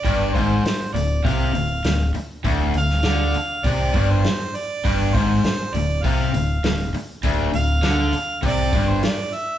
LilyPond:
<<
  \new Staff \with { instrumentName = "Harmonica" } { \time 4/4 \key d \minor \tempo 4 = 100 d''8 c''4 d''8 f''4. r8 | r8 f''4. d''8. c''8. d''8~ | d''8 c''4 d''8 f''4. r8 | r8 f''4. d''8. c''16 d''8 e''8 | }
  \new Staff \with { instrumentName = "Overdriven electric guitar" } { \clef bass \time 4/4 \key d \minor g,8 gis,8 r8 d,8 c8 d,8 d,8 r8 | d,8 d,8 d8 r8 c8 g,8 r4 | g,8 gis,8 r8 d,8 c8 d,8 d,8 r8 | d,8 d,8 d8 r8 c8 g,8 r4 | }
  \new Staff \with { instrumentName = "Overdriven electric guitar" } { \clef bass \time 4/4 \key d \minor g,8 gis,8 r8 d,8 c8 d,8 d,8 r8 | d,8 d,8 d8 r8 c8 g,8 r4 | g,8 gis,8 r8 d,8 c8 d,8 d,8 r8 | d,8 d,8 d8 r8 c8 g,8 r4 | }
  \new Staff \with { instrumentName = "Fingered electric bass" } { \clef bass \time 4/4 \key d \minor g,,8 gis,,8 r8 d,,8 c,8 d,,8 d,,8 r8 | d,,8 d,,8 d,8 r8 c,8 g,,8 r4 | g,,8 gis,,8 r8 d,,8 c,8 d,,8 d,,8 r8 | d,,8 d,,8 d,8 r8 c,8 g,,8 r4 | }
  \new DrumStaff \with { instrumentName = "Drums" } \drummode { \time 4/4 <hho bd>8 <hho bd>8 <hho sn>8 hho8 <hho bd>8 hho8 <hho sn>8 hho8 | <hho bd>8 hho16 sn16 <hho sn>8 hho8 <hho bd>8 <hho bd>8 <hho sn>8 hho8 | <hho bd>8 <hho bd>8 <hho sn>8 hho8 <hho bd>8 hho8 <hho sn>8 hho8 | <hho bd>8 hho8 <hho sn>8 hho8 <hho bd>8 <hho bd>8 <hho sn>8 hho8 | }
>>